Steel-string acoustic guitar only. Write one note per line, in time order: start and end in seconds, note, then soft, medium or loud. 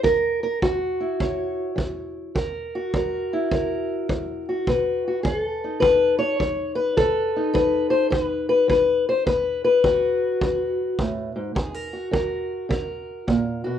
0.03 0.58 F#2 medium
0.03 0.42 A#4 loud
0.43 0.62 A#4 medium
0.62 1.16 F#3 medium
0.62 1.78 F#4 medium
1.00 2.33 E4 soft
1.20 1.74 C#3 medium
1.20 2.34 C#5 soft
1.76 2.31 F#3 medium
2.35 2.89 F#2 medium
2.35 2.93 A#4 medium
2.75 4.48 F#4 medium
2.94 3.48 F#3 medium
2.94 3.51 A#4 medium
3.33 4.65 E4 medium
3.51 4.05 C#3 medium
3.51 4.64 A#4 medium
4.10 4.63 F#3 medium
4.49 5.07 F#4 medium
4.68 5.21 B2 medium
4.68 5.80 B4 medium
5.08 5.23 F#4 medium
5.23 5.79 F#3 medium
5.23 5.37 G#4 medium
5.37 6.39 A4 medium
5.64 7.00 D#4 soft
5.80 6.36 F#3 medium
5.80 6.18 B4 medium
6.19 6.75 C#5 loud
6.40 6.93 F#3 medium
6.75 7.52 B4 loud
6.97 7.51 B2 medium
6.97 8.12 A4 loud
7.36 9.25 D#4 medium
7.54 8.08 F#3 medium
7.54 7.90 B4 loud
7.90 8.10 C5 medium
8.10 8.65 F#3 medium
8.10 8.48 B4 medium
8.49 8.69 B4 medium
8.68 9.22 F#3 medium
8.68 9.07 B4 medium
9.09 9.26 C5 medium
9.26 9.80 B2 medium
9.26 9.63 B4 loud
9.64 10.41 B4 medium
9.84 10.37 F#3 medium
9.84 10.98 F#4 medium
10.43 10.95 F#3 medium
10.43 11.54 B4 soft
10.99 11.35 A2 medium
11.36 11.55 G#2 medium
11.55 12.09 F#2 medium
11.55 11.74 G#4 medium
11.74 12.11 A#4 soft
11.93 13.63 F#4 medium
12.11 12.65 F#3 medium
12.11 12.69 A#4 soft
12.69 13.23 C#3 medium
12.69 13.79 A#4 soft
13.27 13.65 A#2 medium
13.64 13.79 B2 medium
13.64 13.79 F#4 medium